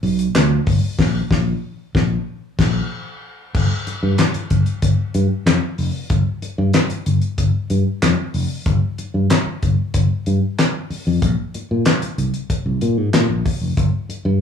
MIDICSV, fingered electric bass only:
0, 0, Header, 1, 3, 480
1, 0, Start_track
1, 0, Tempo, 639659
1, 741, Time_signature, 4, 2, 24, 8
1, 10813, End_track
2, 0, Start_track
2, 0, Title_t, "Fingered electric bass"
2, 0, Program_c, 0, 33
2, 21, Note_on_c, 0, 35, 108
2, 197, Note_off_c, 0, 35, 0
2, 261, Note_on_c, 0, 38, 97
2, 437, Note_off_c, 0, 38, 0
2, 502, Note_on_c, 0, 31, 92
2, 590, Note_off_c, 0, 31, 0
2, 741, Note_on_c, 0, 34, 108
2, 904, Note_off_c, 0, 34, 0
2, 980, Note_on_c, 0, 34, 96
2, 1143, Note_off_c, 0, 34, 0
2, 1462, Note_on_c, 0, 34, 101
2, 1624, Note_off_c, 0, 34, 0
2, 1941, Note_on_c, 0, 34, 95
2, 2104, Note_off_c, 0, 34, 0
2, 2662, Note_on_c, 0, 31, 104
2, 2749, Note_off_c, 0, 31, 0
2, 3021, Note_on_c, 0, 43, 92
2, 3109, Note_off_c, 0, 43, 0
2, 3382, Note_on_c, 0, 31, 84
2, 3469, Note_off_c, 0, 31, 0
2, 3620, Note_on_c, 0, 31, 94
2, 3708, Note_off_c, 0, 31, 0
2, 3862, Note_on_c, 0, 43, 99
2, 3949, Note_off_c, 0, 43, 0
2, 4097, Note_on_c, 0, 41, 94
2, 4186, Note_off_c, 0, 41, 0
2, 4341, Note_on_c, 0, 29, 94
2, 4429, Note_off_c, 0, 29, 0
2, 4578, Note_on_c, 0, 31, 104
2, 4667, Note_off_c, 0, 31, 0
2, 4940, Note_on_c, 0, 43, 105
2, 5028, Note_off_c, 0, 43, 0
2, 5301, Note_on_c, 0, 31, 95
2, 5389, Note_off_c, 0, 31, 0
2, 5539, Note_on_c, 0, 31, 97
2, 5627, Note_off_c, 0, 31, 0
2, 5780, Note_on_c, 0, 43, 92
2, 5868, Note_off_c, 0, 43, 0
2, 6021, Note_on_c, 0, 41, 99
2, 6109, Note_off_c, 0, 41, 0
2, 6260, Note_on_c, 0, 29, 90
2, 6348, Note_off_c, 0, 29, 0
2, 6500, Note_on_c, 0, 31, 114
2, 6588, Note_off_c, 0, 31, 0
2, 6860, Note_on_c, 0, 43, 90
2, 6948, Note_off_c, 0, 43, 0
2, 7225, Note_on_c, 0, 31, 95
2, 7312, Note_off_c, 0, 31, 0
2, 7462, Note_on_c, 0, 31, 94
2, 7550, Note_off_c, 0, 31, 0
2, 7705, Note_on_c, 0, 43, 92
2, 7792, Note_off_c, 0, 43, 0
2, 8305, Note_on_c, 0, 41, 89
2, 8391, Note_off_c, 0, 41, 0
2, 8422, Note_on_c, 0, 34, 110
2, 8509, Note_off_c, 0, 34, 0
2, 8787, Note_on_c, 0, 46, 87
2, 8873, Note_off_c, 0, 46, 0
2, 9140, Note_on_c, 0, 36, 92
2, 9228, Note_off_c, 0, 36, 0
2, 9498, Note_on_c, 0, 36, 80
2, 9587, Note_off_c, 0, 36, 0
2, 9620, Note_on_c, 0, 46, 86
2, 9737, Note_off_c, 0, 46, 0
2, 9737, Note_on_c, 0, 44, 89
2, 9826, Note_off_c, 0, 44, 0
2, 9858, Note_on_c, 0, 46, 96
2, 9947, Note_off_c, 0, 46, 0
2, 9976, Note_on_c, 0, 34, 89
2, 10066, Note_off_c, 0, 34, 0
2, 10216, Note_on_c, 0, 29, 74
2, 10305, Note_off_c, 0, 29, 0
2, 10335, Note_on_c, 0, 31, 106
2, 10425, Note_off_c, 0, 31, 0
2, 10694, Note_on_c, 0, 43, 108
2, 10784, Note_off_c, 0, 43, 0
2, 10813, End_track
3, 0, Start_track
3, 0, Title_t, "Muted fingered electric bass strokes"
3, 2904, Note_on_c, 9, 29, 46
3, 2979, Note_off_c, 9, 29, 0
3, 3263, Note_on_c, 9, 29, 50
3, 3338, Note_off_c, 9, 29, 0
3, 4820, Note_on_c, 9, 29, 46
3, 4895, Note_off_c, 9, 29, 0
3, 5181, Note_on_c, 9, 29, 49
3, 5256, Note_off_c, 9, 29, 0
3, 6744, Note_on_c, 9, 29, 47
3, 6819, Note_off_c, 9, 29, 0
3, 7105, Note_on_c, 9, 29, 50
3, 7180, Note_off_c, 9, 29, 0
3, 8181, Note_on_c, 9, 29, 47
3, 8256, Note_off_c, 9, 29, 0
3, 8668, Note_on_c, 9, 29, 50
3, 8743, Note_off_c, 9, 29, 0
3, 9025, Note_on_c, 9, 29, 47
3, 9100, Note_off_c, 9, 29, 0
3, 10576, Note_on_c, 9, 29, 45
3, 10651, Note_off_c, 9, 29, 0
3, 10813, End_track
0, 0, End_of_file